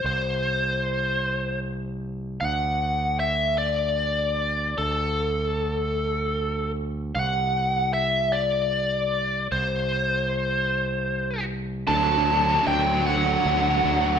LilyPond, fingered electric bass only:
\new Staff \with { instrumentName = "Fingered electric bass" } { \clef bass \time 6/8 \key d \mixolydian \tempo 4. = 51 c,2. | d,2. | d,2. | c,2. |
c,2. | d,4 d,4 d,8 d,8 | }